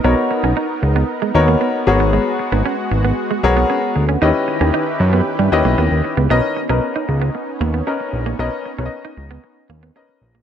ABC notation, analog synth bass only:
X:1
M:4/4
L:1/16
Q:1/4=115
K:B
V:1 name="Analog synth bass" clef=bass
B,,, z2 B,,, z2 C,,2 z2 D,,2 z2 G,,,2- | G,,, z2 G,,, z2 G,,,2 z2 B,,,2 z2 =D,,2 | D,, z2 D,, z2 F,,2 z =G,, D,, B,,, D,, D,, z C,, | B,,, z2 B,,, z2 C,,2 z2 D,,2 z2 A,,,2 |
B,,, z2 B,,, z2 C,,2 z2 D,,2 z2 A,,,2 |]